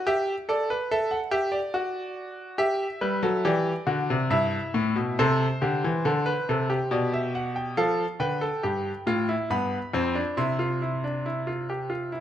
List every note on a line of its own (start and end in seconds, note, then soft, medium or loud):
0.07 0.33 G4 medium
0.07 0.33 E5 medium
0.49 0.70 A4 medium
0.49 0.75 D5 medium
0.70 0.91 B4 medium
0.91 1.18 A4 medium
0.91 1.12 E5 medium
1.11 1.32 F#5 medium
1.31 1.58 G4 medium
1.31 1.53 E5 medium
1.52 2.56 D5 medium
1.74 2.57 F#4 medium
2.58 2.85 G4 medium
2.58 3.42 E5 medium
3.01 3.23 G3 medium
3.01 3.22 B4 medium
3.23 3.44 F#3 medium
3.23 3.44 A4 medium
3.45 3.71 E3 medium
3.45 3.71 G4 medium
3.45 4.28 D5 medium
3.87 4.08 D3 medium
3.87 4.14 F#4 medium
4.10 4.31 C3 medium
4.30 4.57 G2 medium
4.30 5.15 E4 medium
4.30 5.15 E5 medium
4.74 4.95 A2 medium
4.96 5.17 B2 medium
5.19 5.45 C3 medium
5.19 5.45 A4 medium
5.19 6.87 C5 medium
5.62 5.82 D3 medium
5.62 5.88 G4 medium
5.84 6.04 E3 medium
6.05 6.31 D3 medium
6.05 6.25 A4 medium
6.26 6.46 B4 medium
6.49 6.75 C3 medium
6.49 6.69 A4 medium
6.70 7.74 G4 medium
6.91 7.75 B2 medium
6.91 7.12 D5 medium
7.14 7.34 E5 medium
7.35 7.55 F#5 medium
7.56 7.76 G5 soft
7.77 8.04 F3 medium
7.77 8.04 A4 medium
7.77 8.04 F5 medium
8.20 8.46 D3 medium
8.20 8.41 B4 medium
8.20 9.45 G5 medium
8.41 8.62 A4 medium
8.63 8.90 G2 medium
8.63 8.90 G4 medium
9.07 9.33 A2 medium
9.07 9.27 F4 medium
9.29 9.49 E4 medium
9.50 9.77 G2 medium
9.50 9.77 B3 medium
9.50 10.35 B5 medium
9.94 10.20 F2 medium
9.94 10.15 C4 medium
10.15 10.36 D4 medium
10.37 12.20 C3 medium
10.37 10.58 E4 medium
10.37 12.20 C6 medium
10.59 10.80 F4 medium
10.82 11.03 E4 soft
11.04 11.25 D4 medium
11.26 11.47 E4 medium
11.47 11.68 F4 medium
11.70 11.91 G4 soft
11.90 12.12 F4 medium
12.12 12.20 E4 medium